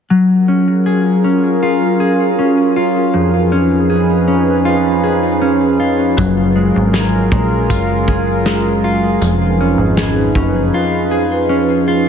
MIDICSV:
0, 0, Header, 1, 5, 480
1, 0, Start_track
1, 0, Key_signature, 6, "major"
1, 0, Tempo, 759494
1, 68, Time_signature, 4, 2, 24, 8
1, 7639, End_track
2, 0, Start_track
2, 0, Title_t, "Ambient pad"
2, 0, Program_c, 0, 92
2, 72, Note_on_c, 0, 54, 68
2, 72, Note_on_c, 0, 65, 57
2, 73, Note_on_c, 0, 61, 59
2, 74, Note_on_c, 0, 70, 75
2, 76, Note_on_c, 0, 68, 61
2, 1971, Note_off_c, 0, 54, 0
2, 1971, Note_off_c, 0, 65, 0
2, 1972, Note_off_c, 0, 68, 0
2, 1972, Note_off_c, 0, 70, 0
2, 1991, Note_on_c, 0, 68, 66
2, 1992, Note_on_c, 0, 53, 68
2, 1992, Note_on_c, 0, 63, 58
2, 1994, Note_on_c, 0, 71, 78
2, 3890, Note_off_c, 0, 53, 0
2, 3890, Note_off_c, 0, 68, 0
2, 3891, Note_off_c, 0, 63, 0
2, 3891, Note_off_c, 0, 71, 0
2, 3908, Note_on_c, 0, 70, 75
2, 3909, Note_on_c, 0, 54, 67
2, 3911, Note_on_c, 0, 65, 64
2, 3911, Note_on_c, 0, 68, 61
2, 5809, Note_off_c, 0, 54, 0
2, 5809, Note_off_c, 0, 70, 0
2, 5810, Note_off_c, 0, 65, 0
2, 5825, Note_on_c, 0, 71, 76
2, 5831, Note_on_c, 0, 63, 61
2, 5832, Note_on_c, 0, 53, 68
2, 7639, Note_off_c, 0, 53, 0
2, 7639, Note_off_c, 0, 61, 0
2, 7639, Note_off_c, 0, 63, 0
2, 7639, Note_off_c, 0, 68, 0
2, 7639, Note_off_c, 0, 71, 0
2, 7639, End_track
3, 0, Start_track
3, 0, Title_t, "Clean electric guitar"
3, 0, Program_c, 1, 27
3, 65, Note_on_c, 1, 54, 65
3, 305, Note_on_c, 1, 61, 49
3, 544, Note_on_c, 1, 68, 52
3, 783, Note_off_c, 1, 61, 0
3, 786, Note_on_c, 1, 61, 47
3, 1028, Note_on_c, 1, 65, 60
3, 1262, Note_off_c, 1, 68, 0
3, 1265, Note_on_c, 1, 68, 52
3, 1506, Note_off_c, 1, 61, 0
3, 1509, Note_on_c, 1, 61, 51
3, 1744, Note_off_c, 1, 65, 0
3, 1747, Note_on_c, 1, 65, 56
3, 1983, Note_on_c, 1, 41, 65
3, 1986, Note_off_c, 1, 54, 0
3, 2222, Note_off_c, 1, 61, 0
3, 2225, Note_on_c, 1, 61, 51
3, 2461, Note_off_c, 1, 68, 0
3, 2463, Note_on_c, 1, 68, 49
3, 2701, Note_off_c, 1, 61, 0
3, 2703, Note_on_c, 1, 61, 52
3, 2938, Note_off_c, 1, 65, 0
3, 2941, Note_on_c, 1, 65, 59
3, 3181, Note_off_c, 1, 68, 0
3, 3183, Note_on_c, 1, 68, 51
3, 3420, Note_off_c, 1, 61, 0
3, 3422, Note_on_c, 1, 61, 52
3, 3661, Note_off_c, 1, 65, 0
3, 3664, Note_on_c, 1, 65, 54
3, 3900, Note_on_c, 1, 54, 67
3, 3905, Note_off_c, 1, 41, 0
3, 4141, Note_off_c, 1, 61, 0
3, 4143, Note_on_c, 1, 56, 52
3, 4380, Note_off_c, 1, 68, 0
3, 4382, Note_on_c, 1, 68, 54
3, 4624, Note_off_c, 1, 56, 0
3, 4627, Note_on_c, 1, 56, 50
3, 4863, Note_off_c, 1, 65, 0
3, 4866, Note_on_c, 1, 65, 60
3, 5106, Note_off_c, 1, 68, 0
3, 5108, Note_on_c, 1, 68, 49
3, 5346, Note_off_c, 1, 56, 0
3, 5349, Note_on_c, 1, 56, 55
3, 5586, Note_off_c, 1, 65, 0
3, 5588, Note_on_c, 1, 65, 56
3, 5824, Note_off_c, 1, 54, 0
3, 5829, Note_on_c, 1, 41, 67
3, 6069, Note_off_c, 1, 56, 0
3, 6071, Note_on_c, 1, 61, 54
3, 6308, Note_off_c, 1, 68, 0
3, 6311, Note_on_c, 1, 68, 56
3, 6544, Note_off_c, 1, 61, 0
3, 6547, Note_on_c, 1, 61, 51
3, 6787, Note_off_c, 1, 65, 0
3, 6789, Note_on_c, 1, 65, 62
3, 7021, Note_off_c, 1, 68, 0
3, 7023, Note_on_c, 1, 68, 52
3, 7261, Note_off_c, 1, 61, 0
3, 7264, Note_on_c, 1, 61, 55
3, 7504, Note_off_c, 1, 65, 0
3, 7507, Note_on_c, 1, 65, 57
3, 7639, Note_off_c, 1, 41, 0
3, 7639, Note_off_c, 1, 61, 0
3, 7639, Note_off_c, 1, 65, 0
3, 7639, Note_off_c, 1, 68, 0
3, 7639, End_track
4, 0, Start_track
4, 0, Title_t, "Analog synth bass"
4, 0, Program_c, 2, 38
4, 3908, Note_on_c, 2, 30, 95
4, 4250, Note_off_c, 2, 30, 0
4, 4274, Note_on_c, 2, 32, 81
4, 4613, Note_off_c, 2, 32, 0
4, 4627, Note_on_c, 2, 34, 81
4, 4869, Note_on_c, 2, 30, 98
4, 4879, Note_off_c, 2, 34, 0
4, 5803, Note_off_c, 2, 30, 0
4, 5824, Note_on_c, 2, 29, 100
4, 6168, Note_off_c, 2, 29, 0
4, 6182, Note_on_c, 2, 32, 84
4, 6527, Note_off_c, 2, 32, 0
4, 6544, Note_on_c, 2, 30, 88
4, 6774, Note_off_c, 2, 30, 0
4, 7639, End_track
5, 0, Start_track
5, 0, Title_t, "Drums"
5, 3903, Note_on_c, 9, 42, 57
5, 3906, Note_on_c, 9, 36, 96
5, 3967, Note_off_c, 9, 42, 0
5, 3970, Note_off_c, 9, 36, 0
5, 4385, Note_on_c, 9, 42, 70
5, 4386, Note_on_c, 9, 38, 89
5, 4448, Note_off_c, 9, 42, 0
5, 4449, Note_off_c, 9, 38, 0
5, 4625, Note_on_c, 9, 36, 79
5, 4688, Note_off_c, 9, 36, 0
5, 4867, Note_on_c, 9, 36, 72
5, 4868, Note_on_c, 9, 42, 62
5, 4930, Note_off_c, 9, 36, 0
5, 4931, Note_off_c, 9, 42, 0
5, 5106, Note_on_c, 9, 36, 73
5, 5169, Note_off_c, 9, 36, 0
5, 5345, Note_on_c, 9, 42, 64
5, 5346, Note_on_c, 9, 38, 91
5, 5409, Note_off_c, 9, 42, 0
5, 5410, Note_off_c, 9, 38, 0
5, 5825, Note_on_c, 9, 42, 57
5, 5888, Note_off_c, 9, 42, 0
5, 6303, Note_on_c, 9, 42, 66
5, 6304, Note_on_c, 9, 38, 100
5, 6366, Note_off_c, 9, 42, 0
5, 6367, Note_off_c, 9, 38, 0
5, 6543, Note_on_c, 9, 36, 85
5, 6606, Note_off_c, 9, 36, 0
5, 7639, End_track
0, 0, End_of_file